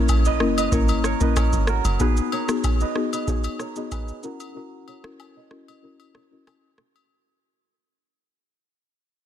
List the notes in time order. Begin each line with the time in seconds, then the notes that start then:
Already playing: A#1 A#3 C#4 E4 F#4 A#4 C#5
0.08 kick, high agogo, low woodblock, shaker
0.25 B4 D#5, shaker
0.40 F#1 A#3 C#4 E4 A#4, cross-stick
0.58 B4 D#5, high agogo, shaker
0.72 G#1 A#3 C#4 E4 A#4 C#5, kick, shaker
0.88 high agogo, shaker
1.04 A#4 C#5, cross-stick, shaker
1.20 A#1 A#3 C#4 E4 A#4 B4 D#5, shaker
1.36 A#4 C#5, kick, cross-stick, high agogo, low woodblock, shaker
1.53 G#1, shaker
1.67 F#4 A#4, cross-stick, shaker
1.85 F#1, high agogo, shaker
2.00 B3 D#4 F#4 G#4 B4, kick, shaker
2.17 shaker
2.32 A#4 C#5, high agogo
2.48 B3 D#4 F#4 G#4, cross-stick, shaker
2.64 kick, high agogo, low woodblock, shaker
2.80 B4 D#5, shaker
2.95 B3 D#4 F#4 G#4, cross-stick
3.13 B4 D#5, high agogo, shaker
3.27 B3 D#4 F#4 G#4 C#5, kick, shaker
3.44 high agogo, shaker
3.59 A#4 C#5, cross-stick, shaker
3.76 B3 D#4 F#4 G#4 B4 D#5, shaker
3.91 G#4 B4, kick, high agogo, low woodblock, shaker
4.08 shaker
4.23 C#4 E4 F#4 A#4, shaker
4.40 high agogo, shaker
4.55 C#4 E4 F#4 A#4
4.88 A#4 C#5, high agogo
5.04 C#4 E4 F#4 A#4, cross-stick
5.20 high agogo, low woodblock
5.37 B4 D#5
5.51 C#4 E4 F#4 A#4, cross-stick
5.68 B4 D#5, high agogo
5.83 C#4 E4 F#4 A#4 C#5
6.00 high agogo
6.15 A#4 C#5, cross-stick
6.31 C#4 E4 F#4 A#4 B4 D#5
6.47 A#4 C#5, cross-stick, high agogo, low woodblock
6.78 F#4 A#4, cross-stick
6.96 high agogo